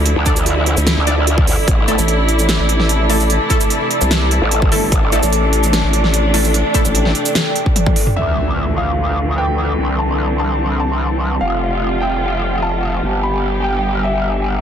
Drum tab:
CC |----------------|----------------|----------------|----------------|
HH |x-x-x-x-x-x-x-o-|x-x-x-x-x-x-x-o-|x-x-x-x-x-x-x-o-|x-x-x-x-x-x-x-o-|
SH |--xx---x--------|--xx---x-------x|--xx---x--------|--xx---x-------x|
SD |--------o-------|--------o--o----|--------o-------|--------o--o----|
T1 |----------------|----------------|----------------|----------------|
T2 |----------------|----------------|----------------|----------------|
BD |--o----------o--|o---------------|--o----------o--|o---------------|

CC |----------------|x---------------|----------------|----------------|
HH |x-x-x-x-x-x-x-o-|----------------|----------------|----------------|
SH |--xx---x--------|----------------|----------------|----------------|
SD |-----o--o-------|----------------|----------------|----------------|
T1 |------------oo--|----------------|----------------|----------------|
T2 |---------------o|----------------|----------------|----------------|
BD |--o--------o-o--|----------------|----------------|----------------|

CC |----------------|
HH |----------------|
SH |----------------|
SD |----------------|
T1 |----------------|
T2 |----------------|
BD |----------------|